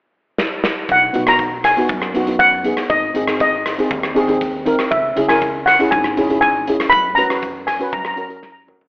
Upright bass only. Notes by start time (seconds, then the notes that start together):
0.89 B1
1.15 B1
1.89 F#2
2.90 G#1
3.16 G#1
3.91 D#2
4.92 C#2
5.17 C#2
5.92 G#1
6.93 F#2
7.18 F#2
7.93 F#2